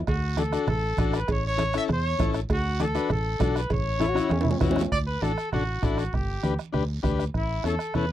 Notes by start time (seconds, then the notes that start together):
0.07 D2 F#4, bombo low, bombo rim, cowbell, long guiro
0.37 D4 F#4 A4, bombo rim, cowbell, high conga, short guiro
0.52 D4 F#4 A4, bombo rim, short guiro
0.67 A1 A4, bombo rim, cowbell, high conga, low conga, long guiro
0.97 A1 D4 F#4 A4, bombo low, bombo rim, cowbell, high conga, short guiro
1.13 B4, bombo rim, short guiro
1.28 A1 C#5, bombo low, bombo rim, cowbell, long guiro
1.47 C#5
1.58 C#4 E4 A4, bombo rim, cowbell, high conga, short guiro
1.73 C#4 E4 A4, bombo rim, short guiro
1.78 E5
1.88 E2, bombo rim, cowbell, high conga, low conga, long guiro
1.93 C#5
2.19 A1 C#4 E4 A4, bombo low, bombo rim, cowbell, high conga, low timbale, short guiro
2.34 bombo rim, short guiro
2.49 D2 F#4, bombo low, bombo rim, cowbell, long guiro
2.80 D4 F#4 A4, bombo rim, cowbell, high conga, short guiro
2.95 D4 F#4 B4, bombo rim, short guiro
3.10 A1 A4, bombo rim, cowbell, high conga, low conga, long guiro
3.39 B1 D4 F#4 A4, bombo low, bombo rim, cowbell, high conga, low timbale, short guiro
3.56 B4, bombo rim, short guiro
3.70 A1 C#5, bombo low, bombo rim, cowbell, high conga, low conga, long guiro
3.98 C#4 D#4 E4 A4, bombo rim, cowbell, high conga, short guiro
4.10 F#4
4.14 C#4 E4 F#4, bombo rim, high conga, short guiro
4.21 E4
4.29 E2 C#4, bombo rim, cowbell, high conga, high timbale, long guiro
4.41 E4, high timbale
4.45 low conga
4.51 C#4, low timbale
4.61 E2 B3 C#4 E4 F#4, bombo low, bombo rim, cowbell, low conga, low timbale, short guiro
4.71 C#4, low timbale
4.76 bombo rim, low conga, short guiro
4.81 low timbale
4.92 D2 D5, bombo low, bombo rim, high conga, long guiro
5.07 B4
5.22 A1 D4 F#4 A4, bombo rim, high conga, short guiro
5.38 bombo rim, short guiro
5.52 A1 D4 F#4 A4, bombo rim, high conga, low conga, long guiro
5.82 A1 D4 E4 F#4 A4, bombo low, bombo rim, high conga, short guiro
5.98 F#4, bombo rim, short guiro
6.13 G1 G4, bombo low, bombo rim, high conga, low conga, long guiro
6.43 D2 D4 G4 B4, bombo rim, high conga, short guiro
6.59 bombo rim, short guiro
6.73 D2 D4 G4 B4, bombo rim, high conga, low conga, long guiro
7.03 D2 D4 G4 B4, bombo low, bombo rim, high conga, low conga, short guiro
7.19 bombo rim, short guiro
7.34 A1 E4, bombo low, bombo rim, high conga, long guiro
7.64 E2 C#4 E4 A4, bombo rim, high conga, short guiro
7.79 bombo rim, short guiro
7.94 E2 C#4 E4 A4 B4, bombo rim, high conga, low conga, long guiro